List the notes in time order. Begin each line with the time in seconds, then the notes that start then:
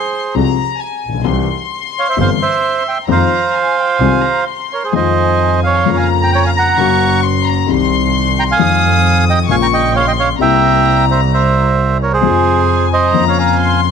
Already playing: G#4 C5 C6
0.35 C2 C3 F3 G#3 C4 G#4 A#5
0.80 G#5
1.05 A#1
1.09 A1
1.14 A#1
1.19 B1
1.24 C2 C3 E3 G3 C4 G4 C6
1.99 C#5 F5
2.09 C5 E5
2.17 G1 G2 E3 G3 C4 G4 C5
2.21 F5
2.42 C5 E5
2.88 E5 G5
3.08 F2 D#3 F3 G#3 C4 F4 C5 A#5
3.12 F5
3.54 G#5
3.78 G5
3.99 C2 C3 D#3 G#3 C4 F4 G#5
4.23 A#5
4.46 C6
4.73 A#4 C#5
4.84 G#4 C5
4.92 F2 D#3 F3 G#3 C4 F4 D#5 G#5
4.96 C5
5.63 C#5 F5
5.79 C6
5.84 F2 C#3 F3 G#3 A#3 A#5
5.89 F4
5.97 F5 G#5
6.21 G5 A#5
6.32 C#5 G5
6.44 F5 G#5
6.56 F#5 A#5
6.77 F#1 F#2 C#3 F#3 A#3 C#6
6.81 F#4
7.24 C6
7.45 A#5
7.66 C2 C3 D#3 G3 C4 C6
7.71 G4
8.39 G5 A#5
8.51 F5 G#5
8.57 F2 D#3 F3 G#3 C4 D#6
8.61 F4
9.30 D#5 G5
9.47 A#1 A#2 C#3 G#3 A#3 F4 F5 G#5 C#6
9.62 G5 A#5
9.73 D#5 G5
9.95 C#5 F5 C6
10.08 D#5 G5
10.19 C#5 F5
10.39 C2 C3 G3 A#3 E4 E5 G5 A#5
11.11 C5 E5
11.34 C5 E5
12.03 A#4 C#5
12.13 G#4 C5
12.21 F2 C3 F3 G#3 G#5
12.25 F4
12.93 C5 D#5
13.12 F2 C#3 F3 A#3 C4 F4 A#5
13.28 C#5 F5
13.39 F5 G#5
13.60 C6